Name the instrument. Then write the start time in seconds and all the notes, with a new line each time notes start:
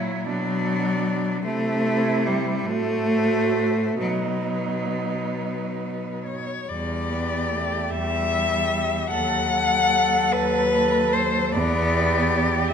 cello
Already playing: A#2 F#3 E4 C#5
0.26 B2 F#3 D4 D5
1.44 C3 A3 E4 C5
2.26 G3
2.67 A2 A3 F#4 C5
3.99 B2 F#3 D#4 B4
6.26 C#5
6.69 E2 G3 D5
7.10 B3 G4
7.51 A3
7.91 E2 G3 E5
8.32 G4
9.10 D#2 F#3 A4 F#5
9.50 A4
10.31 D#2 B4
10.73 A4
11.12 C5
11.52 E2 B3 D5
11.92 G4